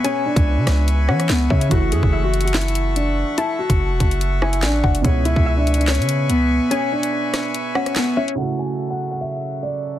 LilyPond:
<<
  \new Staff \with { instrumentName = "Synth pluck" } { \time 4/4 \key fis \minor \tempo 4 = 144 gis''2~ gis''8 fis''4 e''8 | r4 e''4 r2 | a''2~ a''8 gis''4 fis''8 | r4 e''4 r2 |
gis''2~ gis''8 fis''4 e''8 | r1 | }
  \new Staff \with { instrumentName = "Accordion" } { \time 4/4 \key fis \minor << { <e'' cis'''>1~ | <e'' cis'''>1~ | <e'' cis'''>1 | <e'' cis'''>1~ |
<e'' cis'''>1 | <fis' e''>1 | } \\ { <b' gis''>1 | <a fis''>1~ | <a fis''>1 | <b' gis''>1~ |
<b' gis''>1 | <fis a'>1 | } >> }
  \new Staff \with { instrumentName = "Grand piano" } { \time 4/4 \key fis \minor cis'8 d'4. r8 cis'8 b8 cis'8 | fis'8 gis'8. fis'8 fis'16 e'4 d'4 | e'8 fis'4. r8 e'8 d'4 | cis'8 e'8. d'8 d'16 cis'4 b4 |
cis'8 d'4. r8 cis'8 b8 cis'8 | fis''8 gis''8. fis''8 fis''16 e''4 d''4 | }
  \new Staff \with { instrumentName = "Felt piano" } { \time 4/4 \key fis \minor <b, b e' gis'>1 | <e a e' fis'>1~ | <e a e' fis'>1 | <b, b e' gis'>1~ |
<b, b e' gis'>1 | <cis a e' fis'>1 | }
  \new Staff \with { instrumentName = "808-style bass" } { \clef bass \time 4/4 \key fis \minor r8. cis,8 cis16 cis,4 e8 cis,8 cis8 | fis,,8 fis,16 fis,,2. r16 | r8. fis,,8 e,,16 fis,,4. a,,8 fis,,8 | cis,8. cis,4. cis8. cis,8. r16 |
r1 | r1 | }
  \new DrumStaff \with { instrumentName = "Drums" } \drummode { \time 4/4 hh8. <hh bd>16 r8 <hh ss sn>8 hh8 ss16 <hh ss>16 <hc hh sn>8 bd16 hh16 | <hh bd>8 hh16 bd16 \tuplet 3/2 { r16 r16 r16 hh16 hh16 hh16 <hc hh sn>16 hh16 hh16 hh16 r16 r16 } hh4 | hh8. <hh bd>16 r8 <hh bd>16 hh16 hh8 ss16 hh16 <hc hh sn>8 bd16 hh16 | <hh bd>8 hh16 bd16 \tuplet 3/2 { r16 r16 r16 hh16 hh16 hh16 <hc hh sn>16 hh16 hh16 hh16 r16 r16 } hh4 |
hh8. hh16 r8 <hh ss sn>8 hh8 ss16 <hh ss>16 <hc hh sn>8. hh16 | r8 hh8 \tuplet 3/2 { r16 r16 r16 hh16 hh16 hh16 hh16 hh16 hh16 hh16 r16 r16 } hh4 | }
>>